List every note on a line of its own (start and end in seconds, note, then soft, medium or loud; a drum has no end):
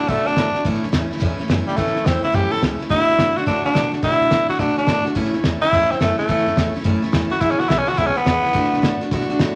0.00 0.07 A3 soft
0.00 0.10 D4 medium
0.00 snare soft
0.08 0.23 B2 loud
0.08 0.26 D3 medium
0.08 0.27 A3 medium
0.08 0.28 A3 loud
0.08 0.26 D4 medium
0.08 0.25 F#4 medium
0.08 kick loud
0.08 snare soft
0.17 snare soft
0.26 0.37 A3 soft
0.26 0.64 D4 loud
0.26 0.37 D4 soft
0.26 0.37 F#4 medium
0.26 muted upright bass stroke medium
0.26 snare soft
0.36 0.51 A2 loud
0.36 0.55 D3 medium
0.36 0.55 A3 medium
0.36 0.55 D4 medium
0.36 0.53 F#4 medium
0.36 snare loud
0.36 hi-hat pedal medium
0.54 0.65 A3 soft
0.54 0.66 D4 medium
0.54 0.65 F#4 medium
0.54 muted upright bass stroke medium
0.54 snare soft
0.65 0.80 A1 loud
0.65 0.83 A2 medium
0.65 0.83 E3 medium
0.65 0.83 A3 medium
0.65 0.83 C#4 loud
0.65 0.82 E4 loud
0.65 kick loud
0.65 snare soft
0.74 snare soft
0.83 0.91 C#2 medium
0.83 0.92 A3 soft
0.83 0.93 C#4 medium
0.83 0.93 E4 medium
0.83 snare soft
0.92 1.07 E2 loud
0.92 1.11 E3 medium
0.92 1.11 A3 medium
0.92 1.11 C#4 medium
0.92 1.10 E4 medium
0.92 snare loud
0.92 hi-hat pedal medium
1.11 1.20 A3 medium
1.11 1.21 C#4 medium
1.11 1.21 E4 medium
1.11 muted upright bass stroke medium
1.11 snare soft
1.17 1.38 A2 medium
1.17 1.39 E3 medium
1.17 1.39 A3 loud
1.17 snare soft
1.22 1.36 E2 loud
1.22 1.38 C#4 medium
1.22 1.36 E4 loud
1.22 kick loud
1.22 snare soft
1.38 1.48 A3 medium
1.38 1.49 C#4 medium
1.38 1.49 E4 medium
1.38 muted upright bass stroke medium
1.38 snare soft
1.48 1.64 F#2 medium
1.48 1.67 E3 medium
1.48 1.67 A3 medium
1.48 1.67 C#4 medium
1.48 1.65 E4 medium
1.48 snare loud
1.48 hi-hat pedal medium
1.66 1.78 G3 medium
1.66 1.77 A3 soft
1.66 1.77 C#4 soft
1.66 1.77 E4 medium
1.66 snare soft
1.76 1.92 F#2 loud
1.76 1.95 A2 medium
1.76 1.96 E3 medium
1.76 2.07 A3 loud
1.76 1.96 A3 medium
1.76 1.95 C#4 medium
1.76 1.93 E4 medium
1.76 kick loud
1.76 snare soft
1.87 snare soft
1.94 2.04 F#2 loud
1.94 2.05 A3 soft
1.94 2.06 C#4 soft
1.94 2.05 E4 medium
1.94 snare soft
2.05 2.20 E2 medium
2.05 2.23 E3 medium
2.05 2.24 A3 medium
2.05 2.23 C4 medium
2.05 2.23 C#4 medium
2.05 2.21 E4 medium
2.05 snare loud
2.05 hi-hat pedal medium
2.22 2.33 A3 soft
2.22 2.33 C#4 medium
2.22 2.33 E4 medium
2.22 2.36 E4 loud
2.22 muted upright bass stroke medium
2.22 snare soft
2.32 2.49 F#2 loud
2.32 2.51 A2 medium
2.32 2.52 E3 medium
2.32 2.52 A3 medium
2.32 2.52 C#4 medium
2.32 2.50 E4 medium
2.32 2.53 G4 loud
2.32 kick loud
2.32 snare soft
2.51 2.60 A3 soft
2.51 2.62 C#4 medium
2.51 2.62 E4 medium
2.51 2.62 A4 medium
2.51 snare soft
2.60 2.76 C#2 medium
2.60 2.79 E3 medium
2.60 2.80 A3 medium
2.60 2.79 C#4 medium
2.60 2.78 E4 medium
2.60 snare loud
2.60 hi-hat pedal medium
2.79 2.90 A3 soft
2.79 2.91 C#4 medium
2.79 2.90 E4 medium
2.79 muted upright bass stroke medium
2.79 snare soft
2.89 3.05 D2 loud
2.89 3.08 D3 medium
2.89 3.09 A3 medium
2.89 3.08 D4 medium
2.89 3.39 E4 loud
2.89 3.06 F#4 medium
2.89 kick loud
2.89 snare soft
2.99 snare soft
3.07 3.17 F#2 medium
3.07 3.18 A3 soft
3.07 3.19 D4 soft
3.07 3.18 F#4 medium
3.07 snare soft
3.17 3.33 A2 medium
3.17 3.36 D3 medium
3.17 3.37 A3 medium
3.17 3.36 D4 medium
3.17 3.34 F#4 medium
3.17 snare loud
3.17 hi-hat pedal medium
3.36 3.46 A3 soft
3.36 3.47 D4 medium
3.36 3.46 F#4 medium
3.36 3.47 F#4 medium
3.36 muted upright bass stroke medium
3.36 snare soft
3.46 3.61 A2 loud
3.46 3.64 D3 medium
3.46 3.65 A3 medium
3.46 3.64 D4 medium
3.46 3.63 F#4 medium
3.46 kick loud
3.46 snare soft
3.64 3.73 A3 soft
3.64 3.92 D4 loud
3.64 3.74 D4 medium
3.64 3.75 F#4 medium
3.64 muted upright bass stroke medium
3.64 snare soft
3.73 3.89 B2 loud
3.73 3.92 D3 medium
3.73 3.93 A3 medium
3.73 3.92 D4 medium
3.73 3.90 F#4 medium
3.73 snare loud
3.73 hi-hat pedal medium
3.91 4.02 A3 soft
3.91 4.03 D4 medium
3.91 4.03 F#4 medium
3.91 muted upright bass stroke medium
3.91 snare soft
4.02 4.17 B2 loud
4.02 4.21 D3 medium
4.02 4.21 A3 medium
4.02 4.21 D4 medium
4.02 4.48 E4 loud
4.02 4.19 F#4 medium
4.02 kick loud
4.02 snare soft
4.11 snare soft
4.20 4.29 B2 loud
4.20 4.30 A3 soft
4.20 4.31 D4 medium
4.20 4.31 F#4 medium
4.20 snare soft
4.30 4.45 A2 medium
4.30 4.49 D3 medium
4.30 4.49 A3 medium
4.30 4.48 D4 medium
4.30 4.47 F#4 medium
4.30 snare loud
4.30 hi-hat pedal medium
4.48 4.59 A3 soft
4.48 4.60 D4 soft
4.48 4.59 F#4 medium
4.48 4.61 F#4 medium
4.48 muted upright bass stroke medium
4.48 snare soft
4.54 snare soft
4.59 4.74 B2 medium
4.59 4.77 D3 medium
4.59 4.78 A3 medium
4.59 4.77 D4 loud
4.59 4.77 D4 medium
4.59 4.75 F#4 medium
4.59 kick loud
4.59 snare soft
4.76 4.87 A3 soft
4.76 5.05 D4 loud
4.76 4.88 D4 soft
4.76 4.87 F#4 medium
4.76 muted upright bass stroke medium
4.76 snare soft
4.87 5.02 A2 loud
4.87 5.05 D3 medium
4.87 5.06 A3 medium
4.87 5.05 D4 medium
4.87 5.03 F#4 medium
4.87 snare loud
4.87 hi-hat pedal medium
5.05 5.15 A3 soft
5.05 5.16 D4 soft
5.05 5.15 F#4 medium
5.05 muted upright bass stroke medium
5.05 snare soft
5.15 5.30 A1 loud
5.15 5.33 A2 medium
5.15 5.34 E3 medium
5.15 5.34 A3 loud
5.15 5.34 C#4 loud
5.15 5.32 E4 loud
5.15 kick loud
5.15 snare soft
5.25 snare soft
5.33 5.42 C#2 loud
5.33 5.44 A3 medium
5.33 5.45 C#4 medium
5.33 5.44 E4 medium
5.33 snare soft
5.44 5.59 E2 medium
5.44 5.62 E3 medium
5.44 5.63 A3 medium
5.44 5.62 C#4 medium
5.44 5.60 E4 medium
5.44 snare loud
5.44 hi-hat pedal medium
5.61 5.73 A3 soft
5.61 5.73 C#4 medium
5.61 5.72 E4 medium
5.61 5.93 E4 loud
5.61 snare soft
5.73 5.87 E2 medium
5.73 5.91 A2 medium
5.73 5.91 E3 medium
5.73 5.91 A3 medium
5.73 5.90 C#4 medium
5.73 5.89 E4 loud
5.73 kick loud
5.73 snare soft
5.90 6.00 A3 soft
5.90 6.00 C4 loud
5.90 6.01 C#4 medium
5.90 6.00 E4 medium
5.90 muted upright bass stroke medium
5.90 snare soft
6.00 6.15 F#2 loud
6.00 6.18 E3 medium
6.00 6.18 A3 medium
6.00 6.19 A3 medium
6.00 6.18 C#4 medium
6.00 6.17 E4 medium
6.00 snare loud
6.00 hi-hat pedal medium
6.18 6.73 A3 loud
6.18 6.28 A3 soft
6.18 6.29 C#4 medium
6.18 6.28 E4 medium
6.18 muted upright bass stroke medium
6.18 snare soft
6.28 6.43 F#2 loud
6.28 6.46 A2 medium
6.28 6.47 E3 medium
6.28 6.47 A3 medium
6.28 6.47 C#4 loud
6.28 6.45 E4 medium
6.28 kick loud
6.28 snare soft
6.38 snare soft
6.46 6.54 F#2 medium
6.46 6.56 A3 soft
6.46 6.57 C#4 soft
6.46 6.57 E4 medium
6.46 snare soft
6.56 6.71 E2 medium
6.56 6.74 E3 medium
6.56 6.75 A3 medium
6.56 6.75 C#4 medium
6.56 6.73 E4 medium
6.56 snare loud
6.56 hi-hat pedal loud
6.74 6.84 A3 medium
6.74 6.85 C#4 medium
6.74 6.85 E4 medium
6.74 muted upright bass stroke medium
6.74 snare soft
6.80 7.03 A2 medium
6.80 7.03 E3 loud
6.80 snare soft
6.85 7.00 F#2 medium
6.85 7.03 A3 loud
6.85 7.03 C#4 loud
6.85 7.01 E4 loud
6.85 kick loud
6.85 snare soft
7.02 7.12 A3 medium
7.02 7.13 C#4 medium
7.02 7.13 E4 medium
7.02 snare soft
7.12 7.28 E2 medium
7.12 7.31 E3 medium
7.12 7.31 A3 medium
7.12 7.30 C#4 medium
7.12 7.29 E4 medium
7.12 snare loud
7.12 hi-hat pedal medium
7.30 7.42 A3 soft
7.30 7.42 C#4 medium
7.30 7.41 E4 medium
7.30 7.42 F#4 medium
7.30 muted upright bass stroke medium
7.30 snare soft
7.40 7.56 E1 loud
7.40 7.59 E2 medium
7.40 7.59 B2 medium
7.40 7.59 E3 medium
7.40 7.58 G#3 medium
7.40 7.58 B3 medium
7.40 7.52 E4 loud
7.40 7.56 E4 medium
7.40 kick loud
7.40 snare soft
7.50 7.61 C#4 medium
7.50 snare soft
7.57 7.67 G#1 medium
7.57 7.66 E3 soft
7.57 7.68 G#3 soft
7.57 7.69 B3 soft
7.57 7.69 E4 medium
7.57 7.70 F#4 loud
7.57 snare soft
7.68 7.84 B1 loud
7.68 7.87 E3 medium
7.68 7.87 G#3 medium
7.68 7.86 B3 medium
7.68 7.79 E4 loud
7.68 7.85 E4 medium
7.68 snare loud
7.68 hi-hat pedal medium
7.78 7.90 C#4 loud
7.86 7.97 E3 soft
7.86 7.97 G#3 medium
7.86 7.98 B3 medium
7.86 7.97 E4 medium
7.86 8.00 F#4 loud
7.86 muted upright bass stroke medium
7.86 snare soft
7.93 8.15 E2 medium
7.93 snare soft
7.97 8.13 B1 medium
7.97 8.16 B2 medium
7.97 8.16 E3 medium
7.97 8.15 G#3 medium
7.97 8.14 B3 medium
7.97 8.08 E4 loud
7.97 8.13 E4 medium
7.97 kick loud
7.97 snare soft
8.06 8.19 C#4 loud
8.15 8.23 E3 soft
8.15 8.25 G#3 medium
8.15 8.25 B3 medium
8.15 8.99 B3 loud
8.15 8.26 E4 medium
8.15 snare soft
8.25 8.40 E2 loud
8.25 8.43 E3 medium
8.25 8.43 G#3 medium
8.25 8.42 B3 medium
8.25 8.41 E4 medium
8.25 snare loud
8.25 hi-hat pedal medium
8.42 8.53 E3 soft
8.42 8.53 G#3 medium
8.42 8.54 B3 medium
8.42 8.54 E4 medium
8.42 muted upright bass stroke medium
8.42 snare soft
8.53 8.69 D2 loud
8.53 8.72 D3 loud
8.53 8.72 A3 medium
8.53 8.72 D4 loud
8.53 8.70 F#4 loud
8.53 kick loud
8.53 snare soft
8.64 snare soft
8.72 8.81 B2 medium
8.72 8.82 A3 medium
8.72 8.83 D4 medium
8.72 8.82 F#4 medium
8.72 snare soft
8.82 8.97 A2 medium
8.82 9.00 D3 medium
8.82 9.01 A3 medium
8.82 9.01 D4 medium
8.82 9.00 F#4 medium
8.82 snare loud
8.82 hi-hat pedal medium
9.01 9.11 A3 medium
9.01 9.12 D4 medium
9.01 9.11 F#4 medium
9.01 muted upright bass stroke medium
9.01 snare soft
9.11 9.26 B2 medium
9.11 9.29 D3 loud
9.11 9.30 A3 loud
9.11 9.30 D4 loud
9.11 9.28 F#4 medium
9.11 kick loud
9.11 snare soft
9.20 snare soft
9.29 9.41 D4 medium
9.29 9.40 F#4 medium
9.29 muted upright bass stroke medium
9.29 snare soft
9.33 9.39 A3 medium
9.39 9.54 A2 loud
9.39 9.55 D3 medium
9.39 9.55 A3 medium
9.39 9.55 D4 medium
9.39 9.55 F#4 medium
9.39 snare loud
9.39 hi-hat pedal medium